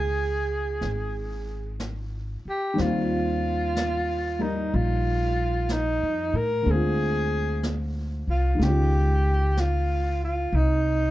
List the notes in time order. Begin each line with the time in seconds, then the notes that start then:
Already playing: C#2 D#3 G#3 C#4 F4 G#4
0.81 G#1, brush sweep, snare
1.80 brush sweep, snare, hi-hat pedal
2.45 G4, muted upright bass stroke
2.74 D#3 G3 C4
2.78 D#2 F4, brush sweep, snare
3.76 brush sweep, snare, hi-hat pedal
4.39 G3 D#4 A#4
4.72 A#1 F4, brush sweep
5.69 D#4, brush sweep, snare, hi-hat pedal
6.03 F2
6.33 A2 A#4
6.62 D2 D3 G#3
6.67 C4 G#4, brush sweep
6.73 F4
7.63 brush sweep, snare, hi-hat pedal
8.27 C2 F4
8.55 D#3 G#3
8.60 C#2 C#4 G4, brush sweep, snare
8.66 F4
9.57 F4, brush sweep, snare, hi-hat pedal
10.24 F4
10.52 C2 D#4, brush sweep